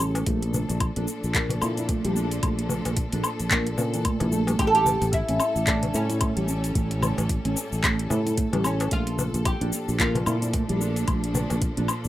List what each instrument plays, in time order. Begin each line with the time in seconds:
Already playing: fretless electric bass A1, string section A2 G3 C#4 A4
0.00 nylon-string guitar C#4, cabasa
0.15 closed hi-hat, darbuka tek, cabasa
0.26 fretless electric bass A#1, string section A#2, nylon-string guitar A3, kick, closed hi-hat, cabasa
0.42 string section F3, closed hi-hat
0.47 string section D4
0.54 darbuka dum, cabasa
0.69 fretless electric bass A#1, closed hi-hat, darbuka ka, cabasa
0.80 kick, closed hi-hat, cabasa, low woodblock
0.96 fretless electric bass A#1, nylon-string guitar D4, closed hi-hat
1.08 cabasa
1.24 fretless electric bass A#1, cabasa
1.35 nylon-string guitar A#3, kick, clap, closed hi-hat, cabasa
1.49 closed hi-hat, darbuka tek, darbuka dum
1.62 fretless electric bass A#2, nylon-string guitar E4, cabasa, low woodblock
1.77 nylon-string guitar E4, closed hi-hat, cabasa
1.89 nylon-string guitar A3, kick, closed hi-hat, darbuka ka, cabasa
2.05 fretless electric bass A#1, nylon-string guitar G3, closed hi-hat
2.16 nylon-string guitar D4, cabasa
2.31 closed hi-hat, cabasa
2.43 fretless electric bass A#1, nylon-string guitar A3, kick, closed hi-hat, cabasa, low woodblock
2.59 closed hi-hat
2.69 darbuka dum, cabasa
2.85 fretless electric bass A#1, closed hi-hat, darbuka ka, darbuka tek, cabasa
2.97 kick, closed hi-hat, cabasa
3.12 fretless electric bass A#1, nylon-string guitar D4, closed hi-hat
3.24 darbuka ka, cabasa, low woodblock
3.40 fretless electric bass A#1, closed hi-hat, cabasa
3.51 nylon-string guitar A#3, kick, clap, closed hi-hat, cabasa
3.67 closed hi-hat
3.78 fretless electric bass A#2, nylon-string guitar C#4, darbuka tek, darbuka dum, cabasa
3.94 nylon-string guitar E3, closed hi-hat, cabasa
4.05 nylon-string guitar A3, kick, closed hi-hat, cabasa, low woodblock
4.20 fretless electric bass A#1, nylon-string guitar E4, closed hi-hat, darbuka ka, darbuka tek, darbuka dum
4.32 nylon-string guitar A3, cabasa
4.47 nylon-string guitar G3, closed hi-hat, darbuka tek, cabasa
4.59 fretless electric bass A1, string section A2, nylon-string guitar A3, oud G4, kick, closed hi-hat, cabasa, low woodblock
4.67 oud A4
4.75 oud G4, closed hi-hat
4.86 darbuka dum, cabasa
5.01 fretless electric bass A1, string section G3 C#4, closed hi-hat, darbuka ka, cabasa
5.13 oud E4, kick, closed hi-hat, cabasa
5.29 fretless electric bass A1, nylon-string guitar C#4, closed hi-hat
5.40 cabasa, low woodblock
5.56 fretless electric bass A1, cabasa
5.67 nylon-string guitar A3, oud D4, kick, clap, closed hi-hat, cabasa
5.83 closed hi-hat, darbuka tek, darbuka dum
5.94 fretless electric bass A2, oud C#4, nylon-string guitar E4, cabasa
6.10 nylon-string guitar E4, closed hi-hat, cabasa
6.21 nylon-string guitar A3, kick, closed hi-hat, darbuka ka, cabasa, low woodblock
6.37 fretless electric bass A1, nylon-string guitar G3, closed hi-hat
6.48 nylon-string guitar C#4, cabasa
6.64 closed hi-hat, cabasa
6.75 fretless electric bass A1, nylon-string guitar A3, kick, closed hi-hat, cabasa
6.91 closed hi-hat
7.02 darbuka dum, cabasa, low woodblock
7.17 fretless electric bass A1, closed hi-hat, darbuka ka, darbuka tek, cabasa
7.29 kick, closed hi-hat, cabasa
7.45 fretless electric bass A1, nylon-string guitar C#4, closed hi-hat
7.56 darbuka ka, cabasa
7.72 fretless electric bass A1, cabasa
7.83 nylon-string guitar A3, kick, clap, closed hi-hat, cabasa, low woodblock
7.99 closed hi-hat
8.10 fretless electric bass A2, nylon-string guitar E4, darbuka tek, darbuka dum, cabasa
8.26 nylon-string guitar E4, closed hi-hat, cabasa
8.37 nylon-string guitar A3, kick, closed hi-hat, cabasa
8.53 fretless electric bass A1, nylon-string guitar G3, closed hi-hat, darbuka ka, darbuka tek, darbuka dum
8.64 nylon-string guitar C#4, oud C#4, cabasa, low woodblock
8.80 closed hi-hat, darbuka tek, cabasa
8.91 fretless electric bass A#1, string section A#2, nylon-string guitar A3, oud F4, kick, closed hi-hat, cabasa
9.07 closed hi-hat
9.19 darbuka dum, cabasa
9.34 fretless electric bass A#1, string section F3, closed hi-hat, darbuka ka, cabasa
9.45 oud G4, kick, closed hi-hat, cabasa, low woodblock
9.61 fretless electric bass A#1, nylon-string guitar D4, closed hi-hat
9.73 string section D4, cabasa
9.88 fretless electric bass A#1, cabasa
9.99 nylon-string guitar A#3, oud F4, kick, clap, closed hi-hat, cabasa
10.15 closed hi-hat, darbuka tek, darbuka dum
10.26 fretless electric bass A#2, nylon-string guitar E4, cabasa, low woodblock
10.42 nylon-string guitar E4, closed hi-hat, cabasa
10.53 nylon-string guitar A3, kick, closed hi-hat, darbuka ka, cabasa
10.69 fretless electric bass A#1, nylon-string guitar G3, closed hi-hat
10.81 nylon-string guitar D4, cabasa
10.96 closed hi-hat, cabasa
11.07 fretless electric bass A#1, nylon-string guitar A3, kick, closed hi-hat, cabasa, low woodblock
11.24 closed hi-hat
11.35 darbuka dum, cabasa
11.50 fretless electric bass A#1, closed hi-hat, darbuka ka, darbuka tek, cabasa
11.62 kick, closed hi-hat, cabasa
11.77 fretless electric bass A#1, nylon-string guitar D4, closed hi-hat
11.88 darbuka ka, cabasa, low woodblock
12.04 fretless electric bass A#1, cabasa